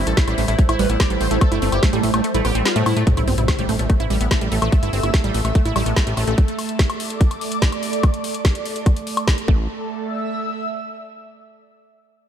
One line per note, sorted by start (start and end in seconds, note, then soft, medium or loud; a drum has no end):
0.00 3.08 G3 medium
0.00 3.09 C5 medium
0.07 0.14 A1 medium
0.07 0.12 E4 medium
0.07 0.13 A4 medium
0.07 closed hi-hat medium
0.17 0.24 E4 medium
0.17 kick loud
0.17 snare loud
0.17 closed hi-hat medium
0.28 0.35 A1 medium
0.28 0.35 G3 loud
0.28 0.34 E4 medium
0.28 closed hi-hat medium
0.28 high woodblock soft
0.38 0.45 A1 loud
0.38 0.43 A3 medium
0.38 open hi-hat loud
0.48 0.56 A1 medium
0.48 0.56 A3 medium
0.48 0.55 E4 medium
0.48 closed hi-hat medium
0.59 0.64 A3 medium
0.59 kick loud
0.59 closed hi-hat medium
0.69 0.76 A1 medium
0.69 0.75 E4 medium
0.69 0.77 E4 loud
0.69 closed hi-hat medium
0.69 high woodblock medium
0.79 0.87 A1 loud
0.79 0.85 G3 loud
0.79 0.86 B4 medium
0.79 open hi-hat loud
0.90 0.97 A1 medium
0.90 0.93 B3 medium
0.90 0.96 E4 medium
0.90 closed hi-hat medium
1.00 1.08 A3 medium
1.00 1.06 D5 medium
1.00 kick loud
1.00 snare loud
1.00 closed hi-hat medium
1.00 high woodblock soft
1.10 1.18 A1 medium
1.10 1.16 G3 medium
1.10 1.17 E4 medium
1.10 closed hi-hat medium
1.21 1.28 A1 loud
1.21 1.26 A3 medium
1.21 1.27 C5 medium
1.21 open hi-hat loud
1.31 1.38 A1 medium
1.31 1.39 A3 loud
1.31 1.37 E4 medium
1.31 closed hi-hat medium
1.41 1.47 A3 medium
1.41 1.48 A4 loud
1.41 kick loud
1.41 closed hi-hat medium
1.41 high woodblock medium
1.52 1.59 G1 medium
1.52 1.58 A3 medium
1.52 1.60 E4 loud
1.52 closed hi-hat medium
1.62 1.69 G1 loud
1.62 1.68 A3 medium
1.62 1.70 C4 medium
1.62 open hi-hat loud
1.72 1.80 G1 medium
1.72 1.78 E4 medium
1.72 1.79 G4 loud
1.72 closed hi-hat medium
1.72 high woodblock soft
1.83 1.89 A3 medium
1.83 kick loud
1.83 snare loud
1.83 closed hi-hat medium
1.93 2.00 A1 medium
1.93 2.01 G3 loud
1.93 1.99 A3 medium
1.93 closed hi-hat medium
2.03 2.11 A1 loud
2.03 2.09 A3 medium
2.03 open hi-hat loud
2.14 2.21 A1 medium
2.14 2.22 A3 medium
2.14 2.20 A3 medium
2.14 closed hi-hat medium
2.14 high woodblock medium
2.24 2.29 A3 medium
2.24 closed hi-hat medium
2.34 2.42 A1 medium
2.34 2.41 A3 medium
2.34 2.42 E4 loud
2.34 closed hi-hat medium
2.45 2.52 A1 loud
2.45 2.53 B3 medium
2.45 2.51 G4 medium
2.45 open hi-hat loud
2.45 high woodblock soft
2.55 2.62 A1 medium
2.55 2.62 A3 medium
2.55 2.60 C4 loud
2.55 closed hi-hat medium
2.65 2.71 B3 medium
2.65 2.72 F4 medium
2.65 snare loud
2.65 closed hi-hat medium
2.76 2.83 A2 medium
2.76 2.84 A3 loud
2.76 2.82 A3 medium
2.76 closed hi-hat medium
2.86 2.94 A2 loud
2.86 2.94 A3 medium
2.86 2.93 E4 medium
2.86 open hi-hat loud
2.86 high woodblock medium
2.96 3.04 A2 medium
2.96 3.03 A3 medium
2.96 3.00 A3 loud
2.96 closed hi-hat medium
3.07 3.12 A3 medium
3.07 9.47 A3 medium
3.07 kick loud
3.07 closed hi-hat medium
3.07 impact medium
3.17 3.25 A1 medium
3.17 3.25 E4 loud
3.17 closed hi-hat medium
3.17 high woodblock soft
3.28 3.35 G1 loud
3.28 3.35 C4 medium
3.28 open hi-hat loud
3.32 9.48 A4 medium
3.32 6.85 E5 medium
3.38 3.45 A1 medium
3.38 3.43 E4 medium
3.38 closed hi-hat medium
3.48 kick loud
3.48 snare loud
3.48 closed hi-hat medium
3.48 high woodblock medium
3.59 3.66 A1 medium
3.59 3.67 G3 loud
3.59 closed hi-hat medium
3.69 3.76 A1 loud
3.69 3.74 A3 medium
3.69 open hi-hat loud
3.79 3.87 A1 medium
3.79 3.87 A3 medium
3.79 closed hi-hat medium
3.90 3.95 A3 medium
3.90 kick loud
3.90 closed hi-hat medium
3.90 high woodblock soft
4.00 4.07 A1 medium
4.00 4.08 E4 loud
4.00 closed hi-hat medium
4.06 6.97 E6 medium
4.10 4.18 A1 loud
4.10 4.16 G3 loud
4.10 open hi-hat loud
4.21 4.28 A1 medium
4.21 4.24 B3 medium
4.21 closed hi-hat medium
4.31 4.39 A3 medium
4.31 kick loud
4.31 snare loud
4.31 closed hi-hat medium
4.31 high woodblock soft
4.41 4.49 A1 medium
4.41 4.47 G3 medium
4.41 closed hi-hat medium
4.52 4.59 A1 loud
4.52 4.57 A3 medium
4.52 open hi-hat loud
4.62 4.69 A1 medium
4.62 4.70 A3 loud
4.62 closed hi-hat medium
4.62 high woodblock medium
4.72 4.78 A3 medium
4.72 kick loud
4.72 closed hi-hat medium
4.83 4.90 G1 medium
4.83 4.91 E4 loud
4.83 closed hi-hat medium
4.93 5.00 G1 loud
4.93 5.01 C4 medium
4.93 open hi-hat loud
5.03 5.11 G1 medium
5.03 5.09 E4 medium
5.03 closed hi-hat medium
5.03 high woodblock soft
5.14 kick loud
5.14 snare loud
5.14 closed hi-hat medium
5.24 5.31 A1 medium
5.24 5.32 G3 loud
5.24 closed hi-hat medium
5.34 5.42 A1 loud
5.34 5.40 A3 medium
5.34 open hi-hat loud
5.45 5.52 A1 medium
5.45 5.53 A3 medium
5.45 closed hi-hat medium
5.45 high woodblock soft
5.55 5.60 A3 medium
5.55 kick loud
5.55 closed hi-hat medium
5.65 5.73 A1 medium
5.65 5.73 E4 loud
5.65 closed hi-hat medium
5.76 5.83 A1 loud
5.76 5.81 G3 loud
5.76 open hi-hat loud
5.76 high woodblock medium
5.86 5.94 A1 medium
5.86 5.89 B3 medium
5.86 closed hi-hat medium
5.96 6.04 A3 medium
5.96 kick loud
5.96 snare loud
5.96 closed hi-hat medium
6.07 6.14 A1 medium
6.07 6.12 G3 medium
6.07 closed hi-hat medium
6.17 6.25 A1 loud
6.17 6.22 A3 medium
6.17 open hi-hat loud
6.17 high woodblock soft
6.28 6.35 A1 medium
6.28 6.35 A3 loud
6.28 closed hi-hat medium
6.38 kick loud
6.38 closed hi-hat medium
6.48 closed hi-hat medium
6.59 open hi-hat loud
6.59 high woodblock soft
6.69 9.48 D5 loud
6.69 closed hi-hat medium
6.79 kick loud
6.79 snare loud
6.79 closed hi-hat medium
6.84 9.48 D6 medium
6.90 closed hi-hat medium
6.90 high woodblock medium
7.00 open hi-hat loud
7.10 closed hi-hat medium
7.21 kick loud
7.21 closed hi-hat medium
7.31 closed hi-hat medium
7.31 high woodblock soft
7.41 open hi-hat loud
7.52 closed hi-hat medium
7.62 kick loud
7.62 snare loud
7.62 closed hi-hat medium
7.72 closed hi-hat medium
7.72 high woodblock soft
7.83 open hi-hat loud
7.93 closed hi-hat medium
8.03 kick loud
8.03 closed hi-hat medium
8.03 high woodblock medium
8.14 closed hi-hat medium
8.24 open hi-hat loud
8.34 closed hi-hat medium
8.45 kick loud
8.45 snare loud
8.45 closed hi-hat medium
8.45 high woodblock soft
8.55 closed hi-hat medium
8.65 open hi-hat loud
8.76 closed hi-hat medium
8.86 kick loud
8.86 closed hi-hat medium
8.86 high woodblock soft
8.97 closed hi-hat medium
9.07 open hi-hat loud
9.17 closed hi-hat medium
9.17 high woodblock medium
9.28 kick loud
9.28 snare loud
9.28 closed hi-hat medium
9.38 closed hi-hat medium
9.48 9.67 A1 loud
9.48 11.10 A3 medium
9.48 9.67 A3 medium
9.48 kick loud
9.54 11.10 A4 medium
9.81 11.30 E5 medium
9.88 11.30 E6 medium